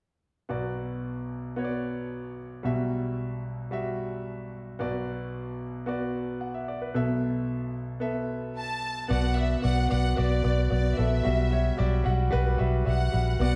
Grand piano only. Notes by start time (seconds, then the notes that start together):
0.49 B1 B2 B3 F#4 D5
1.56 B3 F#4 C#5
1.65 D5
2.63 B1 B2 G3 F#4 E5
3.71 G3 F#4 E5
4.79 B1 B2 B3 F#4 D5
5.86 B3 F#4 D5
6.41 F#5
6.54 E5
6.68 D5
6.82 B4
6.94 B1 B2 B3 A4 E5
8.00 B3 A4 E5
9.08 B2 B3 F#4 D5
9.35 B3 F#4 D5
9.62 B3 F#4 D5
9.89 B3 F#4 D5
10.16 B3 F#4 D5
10.43 B3 F#4 D5
10.70 B3 F#4 D5
10.97 B3 F#4 A4
11.23 B2 G3 F#4 E5
11.51 G3 F#4 C#5
11.77 G3 F#4 D5
12.04 G3 F#4 F#5
12.31 G3 F#4 B4
12.57 G3 F#4 E5
12.85 G3 F#4 E5
13.12 G3 F#4 E5
13.39 B2 B3 F#4 D5